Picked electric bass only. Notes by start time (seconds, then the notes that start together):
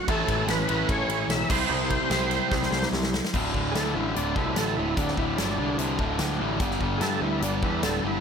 0.08 A1
0.28 A1
0.47 A1
0.68 A1
0.89 A1
1.08 A1
1.28 B1
1.50 C2
1.69 C2
2.10 C2
2.52 C2
2.71 C2
2.92 C2
3.34 D1
3.54 D1
3.74 D2
3.95 A1
4.16 D1
4.36 C2
4.57 A1
4.77 D1
4.97 D1
5.17 D1
5.38 G1
5.58 C2
5.77 C2
5.99 D1
6.20 D2
6.40 A1
6.60 G1
6.81 G1
7.01 G2
7.21 D2
7.41 G1
7.63 E2
7.83 D1
8.03 G1